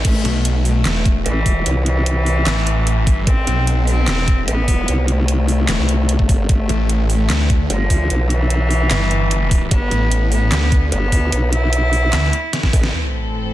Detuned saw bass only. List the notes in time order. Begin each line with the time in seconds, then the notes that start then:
0.25 B1
0.85 E1
1.06 E1
2.46 A1
3.02 G#1
3.47 B1
4.08 E1
4.28 E1
6.69 A1
7.30 D2
7.50 D2
8.91 G1
9.91 A1
10.52 D2
10.72 D2
12.13 D2